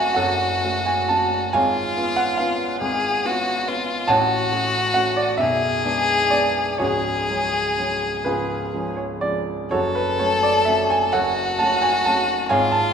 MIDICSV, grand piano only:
0, 0, Header, 1, 2, 480
1, 0, Start_track
1, 0, Key_signature, 3, "minor"
1, 0, Tempo, 914634
1, 807, Time_signature, 6, 3, 24, 8
1, 807, Tempo, 854701
1, 2727, Tempo, 892857
1, 3207, Tempo, 964630
1, 5607, Tempo, 907716
1, 6801, End_track
2, 0, Start_track
2, 0, Title_t, "Grand piano"
2, 0, Program_c, 0, 0
2, 0, Control_c, 0, 64, 127
2, 0, Note_on_c, 0, 30, 59
2, 0, Note_on_c, 0, 42, 70
2, 0, Note_on_c, 0, 57, 52
2, 0, Note_on_c, 0, 61, 52
2, 0, Note_on_c, 0, 66, 57
2, 0, Note_on_c, 0, 69, 68
2, 0, Note_on_c, 0, 73, 93
2, 0, Note_on_c, 0, 74, 85
2, 0, Note_on_c, 0, 76, 90
2, 0, Note_on_c, 0, 80, 98
2, 69, Note_off_c, 0, 57, 0
2, 71, Note_off_c, 0, 61, 0
2, 71, Note_off_c, 0, 66, 0
2, 76, Note_on_c, 0, 78, 102
2, 84, Note_off_c, 0, 73, 0
2, 84, Note_on_c, 0, 73, 72
2, 85, Note_off_c, 0, 69, 0
2, 85, Note_off_c, 0, 80, 0
2, 85, Note_on_c, 0, 69, 74
2, 86, Note_off_c, 0, 42, 0
2, 86, Note_on_c, 0, 42, 63
2, 87, Note_off_c, 0, 30, 0
2, 87, Note_on_c, 0, 30, 62
2, 327, Note_off_c, 0, 30, 0
2, 327, Note_off_c, 0, 42, 0
2, 336, Note_on_c, 0, 57, 54
2, 337, Note_on_c, 0, 61, 53
2, 340, Note_on_c, 0, 66, 58
2, 433, Note_off_c, 0, 69, 0
2, 433, Note_off_c, 0, 73, 0
2, 450, Note_off_c, 0, 78, 0
2, 452, Note_on_c, 0, 80, 94
2, 555, Note_off_c, 0, 57, 0
2, 555, Note_off_c, 0, 61, 0
2, 557, Note_off_c, 0, 66, 0
2, 570, Note_on_c, 0, 81, 106
2, 573, Note_off_c, 0, 80, 0
2, 579, Note_on_c, 0, 57, 52
2, 580, Note_on_c, 0, 61, 54
2, 584, Note_on_c, 0, 66, 58
2, 788, Note_off_c, 0, 57, 0
2, 788, Note_off_c, 0, 61, 0
2, 790, Note_off_c, 0, 66, 0
2, 804, Note_off_c, 0, 81, 0
2, 804, Note_on_c, 0, 80, 115
2, 810, Note_on_c, 0, 44, 73
2, 810, Note_on_c, 0, 77, 85
2, 812, Note_on_c, 0, 73, 84
2, 814, Note_on_c, 0, 32, 65
2, 817, Control_c, 0, 64, 0
2, 818, Note_off_c, 0, 76, 0
2, 820, Note_off_c, 0, 74, 0
2, 922, Control_c, 0, 64, 127
2, 1042, Note_off_c, 0, 44, 0
2, 1044, Note_off_c, 0, 32, 0
2, 1050, Note_on_c, 0, 59, 54
2, 1054, Note_on_c, 0, 61, 56
2, 1056, Note_on_c, 0, 65, 67
2, 1145, Note_off_c, 0, 77, 0
2, 1146, Note_off_c, 0, 73, 0
2, 1159, Note_on_c, 0, 78, 106
2, 1164, Note_off_c, 0, 80, 0
2, 1263, Note_off_c, 0, 59, 0
2, 1265, Note_off_c, 0, 61, 0
2, 1266, Note_off_c, 0, 65, 0
2, 1277, Note_on_c, 0, 77, 103
2, 1281, Note_off_c, 0, 78, 0
2, 1286, Note_on_c, 0, 59, 58
2, 1288, Note_on_c, 0, 61, 57
2, 1291, Note_on_c, 0, 65, 67
2, 1502, Note_off_c, 0, 59, 0
2, 1503, Note_off_c, 0, 61, 0
2, 1504, Note_off_c, 0, 65, 0
2, 1520, Note_off_c, 0, 77, 0
2, 1522, Note_on_c, 0, 32, 68
2, 1523, Note_on_c, 0, 44, 64
2, 1756, Note_off_c, 0, 32, 0
2, 1757, Note_off_c, 0, 44, 0
2, 1766, Note_on_c, 0, 59, 61
2, 1770, Note_on_c, 0, 61, 55
2, 1771, Note_on_c, 0, 65, 62
2, 1982, Note_off_c, 0, 59, 0
2, 1984, Note_off_c, 0, 61, 0
2, 1985, Note_off_c, 0, 65, 0
2, 2005, Note_on_c, 0, 59, 58
2, 2009, Note_on_c, 0, 61, 56
2, 2013, Note_on_c, 0, 65, 61
2, 2222, Note_off_c, 0, 59, 0
2, 2224, Note_off_c, 0, 61, 0
2, 2226, Note_off_c, 0, 65, 0
2, 2232, Note_on_c, 0, 81, 119
2, 2238, Note_on_c, 0, 78, 92
2, 2239, Note_on_c, 0, 73, 90
2, 2240, Note_on_c, 0, 45, 74
2, 2242, Note_on_c, 0, 33, 71
2, 2251, Control_c, 0, 64, 0
2, 2329, Control_c, 0, 64, 127
2, 2476, Note_off_c, 0, 45, 0
2, 2477, Note_off_c, 0, 33, 0
2, 2482, Note_on_c, 0, 57, 54
2, 2484, Note_on_c, 0, 61, 60
2, 2486, Note_on_c, 0, 66, 60
2, 2702, Note_off_c, 0, 78, 0
2, 2703, Note_off_c, 0, 57, 0
2, 2703, Note_off_c, 0, 73, 0
2, 2705, Note_off_c, 0, 61, 0
2, 2706, Note_off_c, 0, 66, 0
2, 2718, Note_on_c, 0, 78, 107
2, 2722, Note_off_c, 0, 81, 0
2, 2728, Note_on_c, 0, 61, 58
2, 2729, Note_on_c, 0, 57, 57
2, 2729, Note_on_c, 0, 66, 61
2, 2839, Note_on_c, 0, 74, 95
2, 2840, Note_off_c, 0, 78, 0
2, 2942, Note_off_c, 0, 61, 0
2, 2943, Note_off_c, 0, 57, 0
2, 2943, Note_off_c, 0, 66, 0
2, 2952, Note_on_c, 0, 76, 106
2, 2961, Note_off_c, 0, 74, 0
2, 2962, Note_on_c, 0, 23, 64
2, 2962, Note_on_c, 0, 35, 75
2, 2973, Control_c, 0, 64, 0
2, 3073, Control_c, 0, 64, 127
2, 3199, Note_off_c, 0, 23, 0
2, 3199, Note_off_c, 0, 35, 0
2, 3206, Note_on_c, 0, 59, 53
2, 3207, Note_on_c, 0, 56, 52
2, 3210, Note_on_c, 0, 62, 57
2, 3420, Note_off_c, 0, 59, 0
2, 3421, Note_off_c, 0, 56, 0
2, 3422, Note_off_c, 0, 62, 0
2, 3433, Note_on_c, 0, 74, 90
2, 3436, Note_off_c, 0, 76, 0
2, 3441, Note_on_c, 0, 56, 47
2, 3443, Note_on_c, 0, 62, 55
2, 3444, Note_on_c, 0, 59, 53
2, 3663, Note_off_c, 0, 56, 0
2, 3664, Note_off_c, 0, 59, 0
2, 3664, Note_off_c, 0, 62, 0
2, 3671, Note_on_c, 0, 73, 94
2, 3678, Note_on_c, 0, 66, 75
2, 3678, Note_on_c, 0, 68, 75
2, 3679, Note_off_c, 0, 74, 0
2, 3679, Note_on_c, 0, 37, 66
2, 3680, Note_on_c, 0, 25, 62
2, 3693, Control_c, 0, 64, 0
2, 3783, Control_c, 0, 64, 127
2, 3918, Note_off_c, 0, 25, 0
2, 3918, Note_off_c, 0, 37, 0
2, 3925, Note_on_c, 0, 54, 53
2, 3929, Note_on_c, 0, 56, 50
2, 3930, Note_on_c, 0, 61, 55
2, 4147, Note_off_c, 0, 54, 0
2, 4149, Note_off_c, 0, 56, 0
2, 4150, Note_off_c, 0, 61, 0
2, 4166, Note_on_c, 0, 54, 49
2, 4170, Note_on_c, 0, 56, 49
2, 4172, Note_on_c, 0, 61, 52
2, 4384, Note_off_c, 0, 66, 0
2, 4384, Note_off_c, 0, 68, 0
2, 4385, Note_off_c, 0, 54, 0
2, 4387, Note_off_c, 0, 56, 0
2, 4388, Note_off_c, 0, 61, 0
2, 4399, Note_on_c, 0, 71, 92
2, 4400, Note_off_c, 0, 73, 0
2, 4406, Note_on_c, 0, 37, 66
2, 4406, Note_on_c, 0, 65, 69
2, 4406, Note_on_c, 0, 68, 74
2, 4407, Note_on_c, 0, 25, 57
2, 4417, Control_c, 0, 64, 0
2, 4520, Control_c, 0, 64, 127
2, 4637, Note_off_c, 0, 25, 0
2, 4637, Note_off_c, 0, 37, 0
2, 4646, Note_on_c, 0, 53, 50
2, 4647, Note_on_c, 0, 56, 51
2, 4649, Note_on_c, 0, 61, 54
2, 4744, Note_off_c, 0, 65, 0
2, 4744, Note_off_c, 0, 68, 0
2, 4757, Note_on_c, 0, 73, 70
2, 4761, Note_off_c, 0, 71, 0
2, 4867, Note_off_c, 0, 53, 0
2, 4868, Note_off_c, 0, 56, 0
2, 4869, Note_off_c, 0, 61, 0
2, 4880, Note_on_c, 0, 74, 89
2, 4883, Note_off_c, 0, 73, 0
2, 4889, Note_on_c, 0, 53, 48
2, 4890, Note_on_c, 0, 56, 48
2, 4891, Note_on_c, 0, 61, 56
2, 5112, Note_off_c, 0, 53, 0
2, 5112, Note_off_c, 0, 56, 0
2, 5113, Note_off_c, 0, 61, 0
2, 5127, Note_off_c, 0, 74, 0
2, 5127, Note_on_c, 0, 73, 104
2, 5132, Note_on_c, 0, 66, 79
2, 5132, Note_on_c, 0, 69, 74
2, 5134, Note_on_c, 0, 30, 64
2, 5134, Note_on_c, 0, 42, 68
2, 5138, Control_c, 0, 64, 0
2, 5231, Control_c, 0, 64, 127
2, 5244, Note_off_c, 0, 66, 0
2, 5244, Note_off_c, 0, 69, 0
2, 5249, Note_on_c, 0, 71, 92
2, 5250, Note_off_c, 0, 73, 0
2, 5366, Note_off_c, 0, 30, 0
2, 5366, Note_off_c, 0, 42, 0
2, 5367, Note_on_c, 0, 73, 94
2, 5370, Note_off_c, 0, 71, 0
2, 5375, Note_on_c, 0, 57, 53
2, 5376, Note_on_c, 0, 54, 52
2, 5376, Note_on_c, 0, 61, 57
2, 5487, Note_off_c, 0, 73, 0
2, 5487, Note_on_c, 0, 74, 95
2, 5588, Note_off_c, 0, 54, 0
2, 5588, Note_off_c, 0, 57, 0
2, 5588, Note_off_c, 0, 61, 0
2, 5596, Note_on_c, 0, 76, 94
2, 5604, Note_off_c, 0, 74, 0
2, 5605, Note_on_c, 0, 54, 54
2, 5608, Note_on_c, 0, 57, 56
2, 5611, Note_on_c, 0, 61, 61
2, 5723, Note_off_c, 0, 76, 0
2, 5728, Note_on_c, 0, 80, 106
2, 5829, Note_off_c, 0, 54, 0
2, 5831, Note_off_c, 0, 57, 0
2, 5833, Note_off_c, 0, 61, 0
2, 5848, Note_on_c, 0, 78, 107
2, 5851, Note_off_c, 0, 80, 0
2, 5853, Note_on_c, 0, 69, 78
2, 5854, Note_on_c, 0, 73, 77
2, 5856, Note_on_c, 0, 30, 66
2, 5858, Note_on_c, 0, 42, 59
2, 5862, Control_c, 0, 64, 0
2, 5957, Control_c, 0, 64, 127
2, 6081, Note_off_c, 0, 69, 0
2, 6082, Note_off_c, 0, 73, 0
2, 6091, Note_on_c, 0, 81, 109
2, 6092, Note_off_c, 0, 30, 0
2, 6093, Note_off_c, 0, 42, 0
2, 6096, Note_off_c, 0, 78, 0
2, 6099, Note_on_c, 0, 54, 56
2, 6101, Note_on_c, 0, 61, 61
2, 6103, Note_on_c, 0, 57, 53
2, 6212, Note_on_c, 0, 80, 107
2, 6216, Note_off_c, 0, 81, 0
2, 6320, Note_off_c, 0, 54, 0
2, 6321, Note_off_c, 0, 57, 0
2, 6321, Note_off_c, 0, 61, 0
2, 6335, Note_on_c, 0, 81, 108
2, 6336, Note_off_c, 0, 80, 0
2, 6343, Note_on_c, 0, 57, 55
2, 6344, Note_on_c, 0, 54, 54
2, 6350, Note_on_c, 0, 61, 62
2, 6555, Note_off_c, 0, 57, 0
2, 6556, Note_off_c, 0, 54, 0
2, 6559, Note_off_c, 0, 61, 0
2, 6570, Note_on_c, 0, 80, 111
2, 6572, Note_off_c, 0, 81, 0
2, 6574, Note_on_c, 0, 77, 99
2, 6575, Note_on_c, 0, 73, 96
2, 6576, Note_on_c, 0, 32, 70
2, 6576, Note_on_c, 0, 44, 79
2, 6583, Control_c, 0, 64, 0
2, 6668, Control_c, 0, 64, 127
2, 6682, Note_off_c, 0, 73, 0
2, 6682, Note_off_c, 0, 77, 0
2, 6688, Note_off_c, 0, 80, 0
2, 6688, Note_on_c, 0, 81, 105
2, 6798, Note_off_c, 0, 32, 0
2, 6798, Note_off_c, 0, 44, 0
2, 6801, Note_off_c, 0, 81, 0
2, 6801, End_track
0, 0, End_of_file